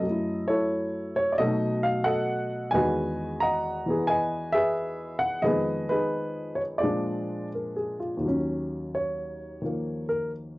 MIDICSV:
0, 0, Header, 1, 2, 480
1, 0, Start_track
1, 0, Key_signature, -6, "minor"
1, 0, Tempo, 676437
1, 28, Time_signature, 4, 2, 24, 8
1, 4347, Tempo, 704225
1, 6267, Tempo, 682594
1, 7421, End_track
2, 0, Start_track
2, 0, Title_t, "Grand piano"
2, 0, Program_c, 0, 0
2, 0, Note_on_c, 0, 42, 44
2, 0, Note_on_c, 0, 69, 62
2, 0, Note_on_c, 0, 75, 85
2, 20, Note_on_c, 0, 54, 43
2, 49, Note_on_c, 0, 57, 37
2, 74, Note_on_c, 0, 64, 41
2, 339, Note_on_c, 0, 73, 80
2, 340, Note_off_c, 0, 69, 0
2, 341, Note_off_c, 0, 64, 0
2, 350, Note_on_c, 0, 69, 56
2, 352, Note_on_c, 0, 64, 55
2, 364, Note_off_c, 0, 75, 0
2, 813, Note_off_c, 0, 73, 0
2, 824, Note_on_c, 0, 73, 80
2, 940, Note_on_c, 0, 74, 58
2, 957, Note_off_c, 0, 73, 0
2, 960, Note_off_c, 0, 64, 0
2, 960, Note_off_c, 0, 69, 0
2, 976, Note_off_c, 0, 42, 0
2, 980, Note_on_c, 0, 75, 86
2, 981, Note_off_c, 0, 54, 0
2, 981, Note_off_c, 0, 74, 0
2, 989, Note_on_c, 0, 47, 52
2, 989, Note_on_c, 0, 66, 66
2, 992, Note_on_c, 0, 54, 53
2, 992, Note_on_c, 0, 69, 58
2, 999, Note_off_c, 0, 57, 0
2, 1010, Note_on_c, 0, 57, 48
2, 1015, Note_on_c, 0, 63, 60
2, 1301, Note_on_c, 0, 77, 79
2, 1315, Note_off_c, 0, 75, 0
2, 1449, Note_off_c, 0, 77, 0
2, 1450, Note_off_c, 0, 69, 0
2, 1450, Note_on_c, 0, 78, 87
2, 1460, Note_on_c, 0, 69, 58
2, 1461, Note_on_c, 0, 75, 62
2, 1915, Note_off_c, 0, 69, 0
2, 1915, Note_off_c, 0, 75, 0
2, 1917, Note_off_c, 0, 66, 0
2, 1922, Note_on_c, 0, 80, 86
2, 1933, Note_on_c, 0, 40, 50
2, 1944, Note_on_c, 0, 75, 60
2, 1945, Note_off_c, 0, 47, 0
2, 1945, Note_on_c, 0, 51, 50
2, 1946, Note_on_c, 0, 71, 69
2, 1947, Note_off_c, 0, 54, 0
2, 1952, Note_on_c, 0, 56, 46
2, 1953, Note_off_c, 0, 78, 0
2, 1956, Note_off_c, 0, 57, 0
2, 1958, Note_off_c, 0, 63, 0
2, 1963, Note_on_c, 0, 66, 58
2, 2415, Note_on_c, 0, 82, 85
2, 2422, Note_off_c, 0, 75, 0
2, 2429, Note_off_c, 0, 80, 0
2, 2429, Note_on_c, 0, 78, 58
2, 2433, Note_on_c, 0, 75, 64
2, 2740, Note_on_c, 0, 52, 51
2, 2756, Note_on_c, 0, 59, 43
2, 2769, Note_on_c, 0, 68, 55
2, 2873, Note_off_c, 0, 71, 0
2, 2890, Note_on_c, 0, 80, 91
2, 2896, Note_off_c, 0, 75, 0
2, 2905, Note_on_c, 0, 71, 62
2, 2906, Note_on_c, 0, 75, 62
2, 2911, Note_off_c, 0, 82, 0
2, 3210, Note_on_c, 0, 76, 95
2, 3213, Note_off_c, 0, 68, 0
2, 3214, Note_off_c, 0, 71, 0
2, 3223, Note_on_c, 0, 68, 67
2, 3224, Note_on_c, 0, 71, 60
2, 3228, Note_off_c, 0, 80, 0
2, 3354, Note_off_c, 0, 78, 0
2, 3672, Note_off_c, 0, 76, 0
2, 3681, Note_on_c, 0, 78, 86
2, 3836, Note_off_c, 0, 68, 0
2, 3836, Note_off_c, 0, 75, 0
2, 3837, Note_off_c, 0, 71, 0
2, 3840, Note_off_c, 0, 78, 0
2, 3845, Note_off_c, 0, 51, 0
2, 3846, Note_on_c, 0, 41, 47
2, 3846, Note_on_c, 0, 75, 81
2, 3856, Note_on_c, 0, 51, 48
2, 3858, Note_off_c, 0, 40, 0
2, 3858, Note_on_c, 0, 68, 58
2, 3863, Note_off_c, 0, 52, 0
2, 3863, Note_off_c, 0, 56, 0
2, 3863, Note_on_c, 0, 71, 62
2, 3871, Note_off_c, 0, 59, 0
2, 3874, Note_off_c, 0, 66, 0
2, 3874, Note_on_c, 0, 56, 42
2, 3885, Note_on_c, 0, 59, 54
2, 4170, Note_off_c, 0, 71, 0
2, 4181, Note_on_c, 0, 71, 79
2, 4185, Note_off_c, 0, 68, 0
2, 4192, Note_off_c, 0, 75, 0
2, 4193, Note_on_c, 0, 63, 54
2, 4196, Note_on_c, 0, 68, 54
2, 4638, Note_on_c, 0, 73, 68
2, 4671, Note_off_c, 0, 71, 0
2, 4676, Note_off_c, 0, 73, 0
2, 4791, Note_off_c, 0, 63, 0
2, 4792, Note_off_c, 0, 68, 0
2, 4794, Note_on_c, 0, 74, 75
2, 4808, Note_off_c, 0, 41, 0
2, 4808, Note_on_c, 0, 65, 51
2, 4809, Note_on_c, 0, 68, 52
2, 4813, Note_off_c, 0, 51, 0
2, 4817, Note_on_c, 0, 46, 49
2, 4818, Note_off_c, 0, 56, 0
2, 4825, Note_on_c, 0, 53, 51
2, 4827, Note_off_c, 0, 59, 0
2, 4828, Note_on_c, 0, 56, 51
2, 4832, Note_on_c, 0, 62, 60
2, 5266, Note_off_c, 0, 74, 0
2, 5316, Note_on_c, 0, 70, 36
2, 5454, Note_off_c, 0, 68, 0
2, 5464, Note_on_c, 0, 68, 47
2, 5613, Note_off_c, 0, 65, 0
2, 5617, Note_off_c, 0, 70, 0
2, 5624, Note_on_c, 0, 65, 50
2, 5718, Note_off_c, 0, 68, 0
2, 5740, Note_on_c, 0, 39, 49
2, 5764, Note_on_c, 0, 51, 37
2, 5791, Note_off_c, 0, 46, 0
2, 5793, Note_on_c, 0, 54, 45
2, 5795, Note_off_c, 0, 53, 0
2, 5797, Note_off_c, 0, 56, 0
2, 5799, Note_off_c, 0, 62, 0
2, 5815, Note_on_c, 0, 61, 51
2, 5876, Note_off_c, 0, 65, 0
2, 6270, Note_on_c, 0, 73, 66
2, 6731, Note_off_c, 0, 51, 0
2, 6742, Note_on_c, 0, 51, 40
2, 6754, Note_on_c, 0, 53, 35
2, 6769, Note_on_c, 0, 58, 44
2, 7047, Note_off_c, 0, 73, 0
2, 7073, Note_on_c, 0, 70, 65
2, 7223, Note_off_c, 0, 70, 0
2, 7421, Note_off_c, 0, 39, 0
2, 7421, Note_off_c, 0, 51, 0
2, 7421, Note_off_c, 0, 53, 0
2, 7421, Note_off_c, 0, 54, 0
2, 7421, Note_off_c, 0, 58, 0
2, 7421, Note_off_c, 0, 61, 0
2, 7421, End_track
0, 0, End_of_file